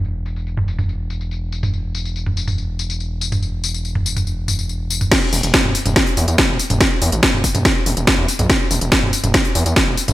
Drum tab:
CC |----------------|----------------|----------------|x---------------|
HH |----------------|----------------|----------------|x-oxx-oxxooxx-ox|
TB |x-xxx-xxx-xxx-xx|x-xxx-xxx-xxx-xx|x-xxx-xxx-xxx-xx|x-xxx-xxx-xx--xx|
SD |----------------|----------------|----------------|o---o---o---o---|
T2 |-----o-o-------o|-----o-o-------o|-----o-o--o----o|-----o-o-------o|
BD |----------------|----------------|----------------|o---o---o---o---|

CC |----------------|----------------|
HH |x-oxx-oxx-oxx-ox|x-oxx-oxxooxx-ox|
TB |x-xxx-xxx-xxx-xx|x-xxx-xxx-xxx-xx|
SD |o---o---o---o---|o---o---o---o---|
T2 |-----o-o-------o|-----o-o-------o|
BD |o---o-o-o---o---|o---o---o---o---|